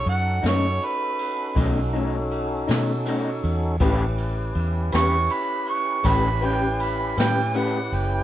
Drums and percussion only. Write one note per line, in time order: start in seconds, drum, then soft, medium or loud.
0.06 ride medium
0.43 snare loud
0.43 ride medium
0.81 ride medium
1.19 ride medium
1.56 kick medium
1.56 ride medium
1.94 ride medium
2.31 ride soft
2.68 snare loud
2.68 ride medium
3.06 ride medium
3.43 ride medium
3.80 kick loud
3.80 ride medium
4.18 ride medium
4.55 ride medium
4.92 snare loud
4.92 ride medium
5.29 ride medium
5.66 ride medium
6.04 kick medium
6.04 ride medium
6.42 ride medium
6.80 ride medium
7.17 snare loud
7.17 ride medium
7.55 ride medium
7.92 ride medium